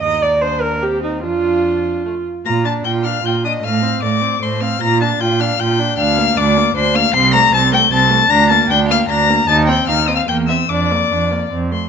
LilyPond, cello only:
\new Staff \with { instrumentName = "Cello" } { \clef bass \time 3/4 \key bes \major \tempo 4 = 152 ees,2. | f,2~ f,8 r8 | bes,4 bes,4 bes,4 | a,4 a,4 a,4 |
bes,4 bes,4 bes,4 | d,4 d,4 d,4 | c,4 c,4 c,4 | d,4 d,4 d,4 |
ees,4 ees,4 e,4 | f,4 f,4 f,4 | }